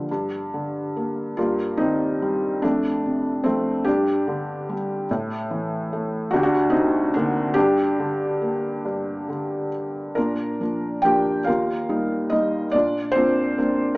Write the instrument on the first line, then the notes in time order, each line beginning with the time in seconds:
felt piano
Already playing: G2 D3 F3 A#3
0.11 G2
0.54 D3
0.97 A#3
1.37 G2 A#3 F4
1.77 D#3 C4 D#4
2.22 G3
2.62 F2 A3 D4
3.06 C3
3.44 F2 A3 C4
3.84 G2 D4 G4
4.28 D3
4.69 G3
5.11 A2
5.51 E3
5.93 A3
6.31 D2 D4 F#4
6.36 G4
6.43 D4 F#4
6.70 C4 D#4
6.75 C3
7.14 D3 A#3 D4
7.54 D4 G4
7.58 G2
7.99 D3
8.42 A#3
8.85 G2
9.29 D3
10.15 A#2 A#3 D4 F4 A#4
10.60 F3 A#3 D4
11.02 F3 A#3 D4 G4 G5
11.44 D#2 F4 A#4 F5
11.89 G3 A#3 D#4
12.30 G3 A#3 D#4 D#5
12.71 A#2 F4 D5
12.76 D4
13.12 C4 C5
13.16 A#3 D4 F4
13.58 A#3 C4 D4